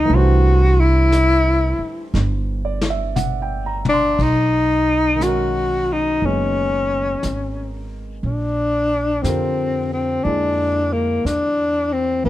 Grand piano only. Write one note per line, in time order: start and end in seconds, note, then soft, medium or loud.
0.00 0.11 G#3 soft
0.00 0.11 C#4 soft
0.00 0.11 F#4 soft
0.00 0.11 G#4 soft
0.00 0.11 B4 medium
0.00 0.11 C#5 medium
0.00 0.10 D#5 soft
0.05 4.16 E3 medium
0.05 4.16 A3 soft
0.10 4.19 G3 soft
0.10 4.18 D4 soft
0.16 4.21 C5 medium
2.65 2.96 D5 medium
2.90 3.26 E5 medium
3.16 3.64 F#5 medium
3.42 3.86 G5 medium
3.66 3.98 A#5 medium
3.94 4.29 C6 medium
5.16 8.21 D#3 soft
5.16 6.20 G#3 soft
5.20 8.24 C#4 soft
5.20 8.25 F#4 soft
5.26 8.26 A#4 medium
6.22 8.24 G#3 soft
6.22 8.24 B3 soft
6.22 8.25 D#4 soft
6.22 8.25 G#4 soft
9.23 12.26 D3 soft
9.23 12.27 C4 soft
9.23 12.27 F4 soft
9.23 12.26 G4 soft
9.27 12.28 A#4 medium
10.24 12.24 G#3 soft
10.24 12.27 A#3 soft
10.24 12.27 E4 soft
10.24 12.27 G#4 soft
12.23 12.29 E3 soft
12.23 12.29 G#3 soft
12.23 12.29 C#4 soft